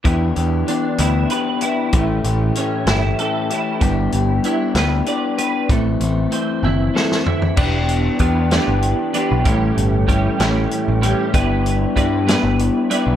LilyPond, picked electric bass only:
\new Staff \with { instrumentName = "Picked electric bass" } { \clef bass \time 6/8 \key e \minor \tempo 4. = 64 e,8 e,8 r8 d,8 r4 | a,,8 a,,8 r8 g,,8 r4 | g,,8 g,,8 r8 d,8 r4 | a,,8 a,,8 r8 fis,,8 r4 |
e,,4 e,8. g,,8 r8 b,,16 | a,,8 g,,4 a,,8 r16 a,,8 r16 | g,,4 g,8. g,,8 r8 b,,16 | }